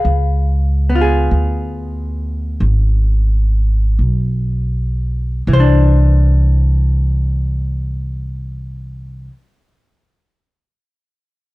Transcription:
Already playing: G#4 B4 F5
0.05 C#2
0.90 B3
0.95 F4
1.01 G#4
1.31 D2
2.60 G#1
3.99 B1
5.47 C2 E3
5.53 C5
5.60 D4

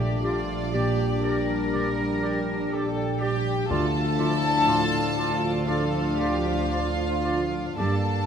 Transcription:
Already playing: A#1 A#2 G3 A3 D4 G4 D5
0.00 G3
0.23 F4 G4 D5
0.50 D5
0.73 A#2 G3 G4 D5
0.99 G5
1.22 G4 A#4 D5
1.49 D5
1.73 A#2 G4 D5
2.00 G3
2.22 G4 D5
2.48 D5
2.72 G4 A4 D5
2.97 G5
3.20 G4 D5 G5
3.46 D5
3.69 D2 D3 F3 D4 F4 A4 D5 A5
3.95 A3
4.18 F3 E4 F4 D5
4.43 D5
4.67 A2 F4 D5
4.92 F5
5.17 F4 A4 D5
5.43 D5
5.66 F3 D4 F4 A4 D5 F5
5.94 A3
6.19 F4 G4 D5
6.46 D5
6.71 F4 A4 D5
6.98 F5
7.24 F4 A4 D5
7.51 D5
7.78 G2 A#3 D4 G4 A4 D5 A5
8.07 A#3

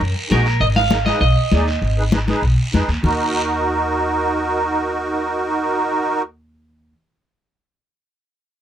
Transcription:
Already playing: A#4
0.00 F#2, high conga, long guiro
0.30 A#1 D#4 F#4 G#4 A#4, high conga, short guiro
0.46 short guiro
0.60 G#1 D#5, high conga, long guiro
0.76 D#4 G#4 B4 F5, high conga
0.91 D#4 G#4 A#4, high conga, short guiro
1.06 D#4 G#4 B4 D#5, high conga, short guiro
1.21 B1 D#5, high conga, long guiro
1.52 D#2 D#4 G#4 D5, high conga, short guiro
1.68 short guiro
1.82 G#1, high conga, long guiro
1.98 D#4 G#4 B4
2.12 D#4 G#4 B4, high conga, short guiro
2.27 D#4 G#4 B4, high conga, short guiro
2.42 B1, high conga, long guiro
2.74 F2 D#4 G#4 B4, high conga, short guiro
2.88 D#2, short guiro
3.03 D#2 D#4 F#4 A#4, low conga, long guiro

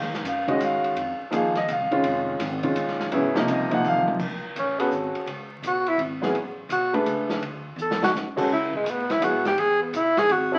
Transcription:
0.00 D#2, snare
0.11 C2, snare
0.23 F#2, hi-hat pedal, ride
0.28 F5
0.48 D#3 G#3 C#4 F#4 D#5, kick, ride
0.59 G#2, hi-hat pedal, ride
0.64 F5
0.82 muted upright bass stroke, ride
0.95 F2, ride
1.19 muted upright bass stroke
1.31 D#2 F3 A#3 D#4 G#4, hi-hat pedal, ride
1.35 F5
1.55 D#5, snare, ride
1.68 C2 F5, hi-hat pedal, ride
1.80 G#1
1.91 F1 D#3 G#3 C#4 F4, ride
2.03 F1, ride
2.39 G#1, snare, hi-hat pedal, ride
2.63 D#3 G#3 C#4 F4, kick, ride
2.76 A#1, hi-hat pedal, ride
2.88 snare
3.00 snare
3.12 G#1 C#3 F#3 B3 E4, ride
3.34 C3 F3 A#3 D#4 A#4, snare
3.47 C2, hi-hat pedal, ride
3.51 D#5
3.70 C3 F3 A#3 D#4 F#5, kick, ride
3.84 D#2 F5, hi-hat pedal, high tom
3.96 high tom
4.08 high tom
4.19 C#2, kick, crash
4.56 A1 C#4, hi-hat pedal, ride
4.78 B3 C#4 F#4 G#4 A4, ride
4.91 G#1, hi-hat pedal
5.15 ride
5.26 C#2, ride
5.62 B1, hi-hat pedal, ride
5.67 F#4
5.86 E4, ride
5.98 G#1, ride
6.22 F#3 B3 E4 G#4, snare
6.33 A1, ride
6.69 B1 F#4, hi-hat pedal, ride
6.93 A3 D4 G#4 B4, ride
7.06 C#2, hi-hat pedal, ride
7.30 snare
7.41 D2, ride
7.76 E2, hi-hat pedal
7.82 A4
7.91 snare
8.03 F#4, snare
8.11 F#2, snare
8.36 G#3 C#4 F#4 A4, kick, crash
8.48 C#3
8.53 E4
8.73 G#3, muted upright bass stroke, kick
8.84 A2, hi-hat pedal, ride
8.90 B3
9.10 E4, snare, ride
9.20 G#2 F#3 B3 E4 G#4, hi-hat pedal, ride
9.24 F#4
9.45 G4, snare, ride
9.57 E2 G#4, ride
9.83 B3
9.93 B1 E4, hi-hat pedal, ride
10.17 G#4, snare, ride
10.28 G#1 F#4, ride
10.52 G#3 C#4 E4 F#4 A4

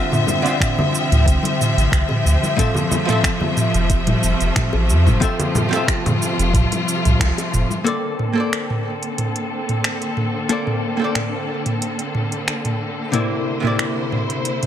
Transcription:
Already playing: C3 D3 F3 C4 F4 E5
0.12 mid tom, low conga, shaker
0.27 high conga, low conga, shaker
0.42 D3 C4, closed hi-hat
0.46 F4 E5, shaker
0.60 finger snap, kick, closed hi-hat, mid tom, shaker
0.78 high bongo, high conga, low conga
0.95 shaker
1.11 D2, closed hi-hat, mid tom, shaker
1.26 C2, kick, closed hi-hat, shaker
1.43 closed hi-hat, high conga
1.61 mid tom, shaker
1.77 A1, closed hi-hat, shaker
1.92 C2, finger snap, kick, closed hi-hat, high conga, shaker
2.09 mid tom, high bongo
2.25 D2, shaker
2.43 high conga, shaker
2.57 C3 F3 A3 C4 A4 E5, kick, closed hi-hat, mid tom, shaker
2.75 low conga, shaker
2.91 high conga, low conga, shaker
3.05 F3 C4, closed hi-hat, mid tom, shaker
3.10 A4 E5
3.24 finger snap, kick, closed hi-hat, shaker
3.40 high conga, low conga
3.57 mid tom, shaker
3.74 F1, closed hi-hat, shaker
3.90 kick, closed hi-hat, shaker
4.07 closed hi-hat, mid tom, high conga
4.23 F1, shaker
4.40 F1, closed hi-hat, shaker
4.56 finger snap, kick, closed hi-hat, mid tom, high conga, shaker
4.73 A1, high bongo
4.89 F2, shaker
5.06 F1, mid tom, high conga, shaker
5.20 F3 C4 F4 A4 E5, kick, closed hi-hat, shaker
5.39 closed hi-hat, low conga, shaker
5.55 mid tom, high conga, low conga, shaker
5.69 F3 C4
5.73 A4 E5, finger snap, closed hi-hat, shaker
5.88 finger snap, kick, closed hi-hat, shaker
6.06 closed hi-hat, mid tom, high bongo, high conga, low conga, shaker
6.22 shaker
6.38 F1, closed hi-hat, shaker
6.54 C2, kick, closed hi-hat, mid tom, shaker
6.72 closed hi-hat, high conga, shaker
6.89 shaker
7.05 C2, closed hi-hat, mid tom, shaker
7.20 C2, finger snap, kick, closed hi-hat, high conga, shaker
7.38 closed hi-hat, high bongo, shaker
7.53 F1, mid tom, shaker
7.70 high conga, shaker
7.84 D3 A#3 C4 A4 C5 D5, closed hi-hat
8.19 mid tom
8.33 A#3 A4
8.37 C5 D5
8.53 finger snap, closed hi-hat
8.70 mid tom
9.03 closed hi-hat
9.18 closed hi-hat, mid tom
9.36 closed hi-hat
9.69 closed hi-hat, mid tom
9.84 finger snap, closed hi-hat
10.02 closed hi-hat
10.17 mid tom
10.49 A#3 A4 C5 D5, closed hi-hat
10.67 mid tom
10.97 A#3 A4
11.02 C5 D5
11.15 finger snap, closed hi-hat, mid tom
11.66 closed hi-hat, mid tom
11.82 closed hi-hat
11.99 closed hi-hat
12.15 mid tom
12.32 closed hi-hat
12.48 finger snap, closed hi-hat
12.65 closed hi-hat, mid tom
13.12 C3 A#3 E4 C5 D5, closed hi-hat, mid tom
13.60 C3 A#3, mid tom
13.65 E4 D5
13.79 finger snap, closed hi-hat
14.12 mid tom
14.30 closed hi-hat
14.45 closed hi-hat
14.63 closed hi-hat, mid tom

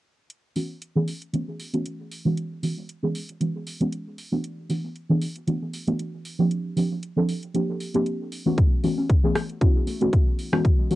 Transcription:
0.30 closed hi-hat
0.56 E3 A3 B3 C#4 F#4, open hi-hat
0.82 closed hi-hat
0.96 E3 A3 B3 C#4 G#4
1.08 open hi-hat
1.22 closed hi-hat
1.33 E3 A3 B3 C#4 F#4, closed hi-hat
1.60 open hi-hat
1.73 E3 A3 B3 C#4 F#4, closed hi-hat
1.85 closed hi-hat
2.11 open hi-hat
2.25 E3 G#3 B3 C#4 F#4
2.37 closed hi-hat
2.63 E3 G#3 B3 C#4 F#4, open hi-hat
2.89 closed hi-hat
3.02 E3 G#3 B3 C#4 G#4
3.15 open hi-hat
3.29 closed hi-hat
3.40 E3 G#3 B3 C#4 F#4, closed hi-hat
3.66 open hi-hat
3.80 E3 G#3 B3 C#4 F#4, closed hi-hat
3.92 closed hi-hat
4.18 open hi-hat
4.32 E3 A3 B3 D4 F#4
4.44 closed hi-hat
4.70 E3 A3 B3 D4 F#4, open hi-hat
4.96 closed hi-hat
5.09 E3 A3 B3 D4 G#4
5.22 open hi-hat
5.36 closed hi-hat
5.47 E3 A3 B3 D4 F#4, closed hi-hat
5.73 open hi-hat
5.87 E3 A3 B3 D4 F#4, closed hi-hat
5.99 closed hi-hat
6.25 open hi-hat
6.39 F3 A#3 C4 D4 G4
6.51 closed hi-hat
6.76 F3 A#3 C4 D4 G4, open hi-hat
7.03 closed hi-hat
7.16 F3 A#3 C4 D4 A4
7.29 open hi-hat
7.43 closed hi-hat
7.54 F3 A#3 C4 D4 G4, closed hi-hat
7.80 open hi-hat
7.94 F3 A#3 C4 D4 G4, closed hi-hat
8.06 closed hi-hat
8.32 open hi-hat
8.46 E3 A3 B3 C#4 F#4
8.58 A3, kick, closed hi-hat
8.83 E3 A3 B3 C#4 F#4, open hi-hat
8.98 C#4
9.10 kick, closed hi-hat
9.23 E3 A3 B3 C#4 G#4
9.35 cross-stick, open hi-hat
9.49 closed hi-hat
9.61 E3 A3 B3 C#4 E4 F#4, kick, closed hi-hat
9.87 A3, open hi-hat
10.01 E3 A3 B3 C#4 F#4, closed hi-hat
10.13 A3, kick, closed hi-hat
10.39 open hi-hat
10.52 E3 G#3 B3 C#4 F#4, cross-stick
10.65 kick, closed hi-hat
10.79 G#3
10.90 E3 G#3 B3 C#4 F#4, open hi-hat

